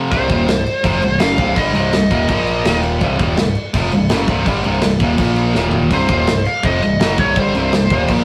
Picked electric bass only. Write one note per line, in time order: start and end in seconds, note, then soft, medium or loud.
0.12 0.29 C1 loud
0.30 0.47 D#1 loud
0.48 0.65 C1 medium
0.84 1.01 F1 loud
1.02 1.19 C1 medium
1.21 1.38 F#1 loud
1.39 1.56 C1 loud
1.57 1.74 G1 loud
1.75 1.92 C1 medium
1.93 2.10 C1 medium
2.11 2.28 D#1 loud
2.29 2.63 A#1 medium
2.66 2.99 D#1 loud
3.02 3.19 C1 loud
3.20 3.37 D#1 medium
3.40 3.56 C1 medium
3.74 3.91 F1 loud
3.94 4.10 C1 medium
4.12 4.28 F#1 loud
4.28 4.45 C1 loud
4.46 4.63 G1 loud
4.67 4.83 C1 loud
4.84 5.00 C1 medium
5.00 5.18 D#1 loud
5.19 5.53 A#1 medium
5.56 5.89 D#1 loud
5.91 6.08 C1 loud
6.09 6.26 D#1 loud
6.29 6.46 C1 medium
6.64 6.81 F1 loud
6.84 7.00 C1 medium
7.01 7.18 F#1 loud
7.18 7.35 C1 medium
7.37 7.54 G1 loud
7.55 7.72 C1 medium
7.74 7.90 C1 medium
7.91 8.08 D#1 loud
8.09 8.24 A#1 loud